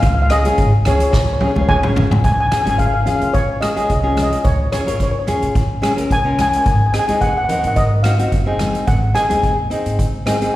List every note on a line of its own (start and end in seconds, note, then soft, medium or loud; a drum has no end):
0.02 0.45 C#2 loud
0.02 0.13 F5 medium
0.02 kick loud
0.02 closed hi-hat medium
0.14 0.21 F5 medium
0.22 0.29 F5 medium
0.30 0.39 C#4 medium
0.30 0.40 F4 medium
0.30 0.40 G#4 medium
0.30 0.87 D#5 medium
0.30 cross-stick medium
0.30 closed hi-hat medium
0.45 0.70 C#4 medium
0.45 0.70 F4 medium
0.45 0.70 G#4 medium
0.45 closed hi-hat medium
0.45 high conga medium
0.58 0.80 G#1 medium
0.58 kick medium
0.58 closed hi-hat medium
0.85 1.07 C#2 medium
0.85 1.19 C#4 medium
0.85 1.19 F4 medium
0.85 1.20 G#4 medium
0.85 0.94 C#5 medium
0.85 cross-stick medium
0.85 closed hi-hat medium
0.85 low conga medium
0.96 1.02 C#5 medium
1.00 1.09 C#5 medium
1.00 closed hi-hat medium
1.11 1.46 C#2 loud
1.11 1.17 C#5 medium
1.11 kick loud
1.11 snare medium
1.18 1.24 C#5 soft
1.25 1.32 C#5 soft
1.33 1.38 C#5 medium
1.39 1.50 C#4 medium
1.39 1.50 F4 medium
1.39 1.50 G#4 medium
1.39 1.46 C#5 soft
1.39 high tom medium
1.47 1.53 C#5 soft
1.54 1.87 C#2 medium
1.54 1.71 C#4 medium
1.54 1.71 F4 medium
1.54 1.71 G#4 medium
1.54 1.60 C#5 soft
1.54 high conga medium
1.54 low conga medium
1.61 1.66 C#5 medium
1.68 1.75 C#5 medium
1.68 2.23 G#5 loud
1.68 kick medium
1.68 mid tom medium
1.76 1.83 C#5 medium
1.83 2.24 C#4 medium
1.83 2.23 F4 medium
1.83 2.24 G#4 medium
1.83 1.90 C#5 medium
1.83 mid tom medium
1.83 high conga medium
1.96 2.17 G#1 medium
1.96 floor tom loud
1.96 low conga medium
2.11 floor tom medium
2.11 high conga medium
2.24 2.45 C#2 medium
2.24 2.31 G#5 medium
2.24 kick loud
2.24 closed hi-hat medium
2.24 low conga medium
2.32 2.39 G#5 medium
2.40 2.46 G#5 medium
2.47 2.52 G#5 medium
2.51 2.60 C#4 medium
2.51 2.60 F4 medium
2.51 2.60 G#4 medium
2.51 2.61 G#5 medium
2.51 cross-stick medium
2.51 closed hi-hat medium
2.51 low conga medium
2.62 2.90 C#4 medium
2.62 2.91 F4 medium
2.62 2.69 G#5 medium
2.66 3.09 G#1 medium
2.66 2.91 G#4 medium
2.66 2.76 G#5 medium
2.66 closed hi-hat medium
2.66 high conga medium
2.78 2.85 F5 medium
2.78 kick medium
2.78 closed hi-hat soft
2.86 2.93 F5 medium
2.94 2.99 F5 medium
3.01 3.07 F5 medium
3.05 3.39 C#4 medium
3.05 3.40 F4 medium
3.05 3.40 G#4 medium
3.05 3.15 F5 medium
3.05 closed hi-hat medium
3.05 low conga medium
3.16 3.22 F5 medium
3.21 3.74 C#3 medium
3.21 3.31 F5 medium
3.21 closed hi-hat soft
3.33 3.59 C#5 medium
3.33 kick loud
3.33 closed hi-hat medium
3.61 3.70 C#4 medium
3.61 3.70 F4 medium
3.61 3.71 G#4 medium
3.61 3.68 D#5 medium
3.61 cross-stick medium
3.61 closed hi-hat medium
3.61 high conga medium
3.69 3.75 D#5 soft
3.75 3.92 C#4 medium
3.75 3.92 F4 medium
3.75 3.92 G#4 medium
3.75 3.83 D#5 medium
3.75 closed hi-hat medium
3.84 3.90 D#5 soft
3.90 4.32 C2 medium
3.90 3.99 D#5 medium
3.90 kick medium
3.90 closed hi-hat medium
4.00 4.44 C#4 medium
4.00 4.44 F4 medium
4.00 4.44 G#4 medium
4.00 4.07 D#5 soft
4.08 4.14 D#5 medium
4.15 4.21 D#5 soft
4.15 cross-stick medium
4.15 closed hi-hat medium
4.15 high conga medium
4.15 low conga medium
4.23 4.29 D#5 medium
4.31 4.37 D#5 medium
4.31 closed hi-hat medium
4.44 4.66 C#2 medium
4.44 4.71 C#5 medium
4.44 kick loud
4.44 closed hi-hat medium
4.44 low conga medium
4.72 4.81 C#4 medium
4.72 4.81 F4 medium
4.72 4.81 G#4 medium
4.72 4.80 C#5 medium
4.72 cross-stick medium
4.72 closed hi-hat medium
4.72 low conga medium
4.81 4.87 C#5 medium
4.86 5.30 G#1 medium
4.86 5.11 C#4 medium
4.86 5.12 F4 medium
4.86 5.11 A#4 medium
4.86 4.94 C#5 medium
4.86 closed hi-hat medium
4.96 5.02 C#5 soft
5.00 5.10 C#5 medium
5.00 kick medium
5.00 closed hi-hat medium
5.12 5.18 C#5 medium
5.19 5.25 C#5 medium
5.27 5.61 C#4 medium
5.27 5.61 F4 medium
5.27 5.61 G#4 medium
5.27 closed hi-hat medium
5.27 low conga medium
5.42 5.95 C#3 medium
5.42 closed hi-hat medium
5.55 kick loud
5.55 closed hi-hat medium
5.82 5.91 C#4 medium
5.82 5.91 F4 medium
5.82 5.92 G#4 medium
5.82 cross-stick medium
5.82 closed hi-hat medium
5.82 high conga medium
5.96 6.13 C#4 medium
5.96 6.13 F4 medium
5.96 6.13 A#4 medium
5.96 closed hi-hat medium
6.11 6.53 C2 medium
6.11 6.24 G#5 loud
6.11 kick medium
6.11 closed hi-hat medium
6.25 6.66 C#4 medium
6.25 6.66 F4 medium
6.25 6.66 A#4 medium
6.39 6.47 G#5 medium
6.39 cross-stick medium
6.39 closed hi-hat medium
6.39 high conga medium
6.39 low conga medium
6.49 6.55 G#5 medium
6.53 6.62 G#5 medium
6.53 closed hi-hat medium
6.64 6.87 G#1 medium
6.64 6.69 G#5 medium
6.64 kick medium
6.64 closed hi-hat medium
6.64 low conga medium
6.72 6.78 G#5 medium
6.79 6.85 G#5 soft
6.86 6.91 G#5 medium
6.93 7.02 C4 medium
6.93 7.03 D#4 medium
6.93 7.03 G#4 medium
6.93 6.98 G#5 medium
6.93 cross-stick medium
6.93 closed hi-hat medium
6.99 7.06 G#5 medium
7.07 7.51 D#2 medium
7.07 7.33 C4 medium
7.07 7.33 D#4 medium
7.07 7.33 G#4 medium
7.07 7.13 G#5 medium
7.07 closed hi-hat medium
7.07 high conga medium
7.21 7.28 F#5 medium
7.21 kick medium
7.21 closed hi-hat medium
7.29 7.36 F#5 medium
7.37 7.43 F#5 medium
7.45 7.82 C4 medium
7.45 7.51 F#5 medium
7.49 7.82 D#4 medium
7.49 7.83 A#4 medium
7.49 7.58 F#5 medium
7.49 closed hi-hat medium
7.49 low conga medium
7.60 8.16 G#2 medium
7.60 7.66 F#5 medium
7.64 7.74 F#5 medium
7.64 closed hi-hat medium
7.76 8.05 D#5 medium
7.76 kick loud
7.76 closed hi-hat medium
8.03 8.13 C4 medium
8.03 8.13 D#4 medium
8.03 8.14 F#4 medium
8.03 8.89 F5 medium
8.03 cross-stick medium
8.03 closed hi-hat medium
8.03 high conga medium
8.19 8.35 C4 medium
8.19 8.35 D#4 medium
8.19 8.35 F#4 medium
8.19 closed hi-hat medium
8.32 8.75 F#1 medium
8.32 kick medium
8.32 closed hi-hat medium
8.46 8.87 C4 medium
8.46 8.87 D#4 medium
8.46 8.87 G#4 medium
8.59 cross-stick medium
8.59 closed hi-hat medium
8.59 high conga medium
8.59 low conga medium
8.75 closed hi-hat medium
8.87 9.09 G#1 loud
8.87 9.16 F#5 medium
8.87 kick loud
8.87 closed hi-hat medium
8.87 low conga medium
9.14 9.23 C4 medium
9.14 9.24 D#4 medium
9.14 9.24 G#4 medium
9.14 9.67 G#5 medium
9.14 cross-stick medium
9.14 closed hi-hat medium
9.29 9.73 D#2 medium
9.29 9.54 C4 medium
9.29 9.54 D#4 medium
9.29 9.54 G#4 medium
9.29 closed hi-hat medium
9.29 high conga medium
9.43 kick medium
9.43 closed hi-hat soft
9.70 10.04 C4 medium
9.70 10.04 D#4 medium
9.70 10.04 G#4 medium
9.70 closed hi-hat medium
9.86 10.38 G#2 medium
9.86 closed hi-hat medium
9.99 kick medium
9.99 closed hi-hat medium
10.26 10.35 C4 medium
10.26 10.35 D#4 medium
10.26 10.35 G#4 medium
10.26 cross-stick medium
10.26 closed hi-hat medium
10.26 high conga medium
10.41 10.55 C4 medium
10.41 10.55 D#4 medium
10.41 10.55 G#4 medium
10.41 closed hi-hat medium